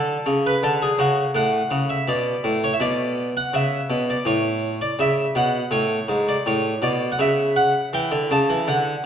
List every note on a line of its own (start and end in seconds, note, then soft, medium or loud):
0.00 0.15 D3 medium
0.00 0.36 A4 loud
0.26 0.52 C#3 medium
0.46 0.63 B4 medium
0.63 0.88 D3 medium
0.63 0.80 A4 loud
0.82 0.99 G#4 medium
0.98 1.24 C#3 medium
0.98 1.29 F#4 medium
1.35 1.60 A2 medium
1.35 1.81 F#5 loud
1.71 1.97 C#3 medium
1.90 2.07 E5 medium
2.08 2.34 B2 medium
2.08 2.55 D5 loud
2.44 2.70 A2 medium
2.64 2.74 C#5 loud
2.73 2.80 E5 medium
2.80 3.33 B2 medium
2.80 3.27 D5 loud
3.37 3.54 F#5 loud
3.53 3.80 C#3 medium
3.53 4.00 E5 medium
3.90 4.16 B2 medium
4.10 4.27 D5 medium
4.25 4.78 A2 medium
4.25 4.73 C#5 loud
4.81 4.99 D5 loud
4.99 5.25 C#3 medium
4.99 5.31 E5 loud
5.35 5.62 B2 medium
5.35 5.67 F#5 loud
5.71 5.98 A2 medium
5.71 6.27 C#5 loud
6.08 6.35 G#2 medium
6.28 6.46 D5 loud
6.46 6.72 A2 medium
6.46 6.77 C#5 loud
6.82 7.08 B2 medium
6.82 7.12 D5 loud
7.12 7.18 F#5 medium
7.19 7.72 C#3 medium
7.19 7.51 E5 loud
7.56 7.88 F#5 loud
7.93 8.11 E3 medium
7.93 8.31 G5 loud
8.11 8.29 D3 medium
8.31 8.48 C#3 medium
8.31 8.68 A5 loud
8.49 8.67 E3 medium
8.67 8.94 D3 medium
8.67 9.05 F#5 loud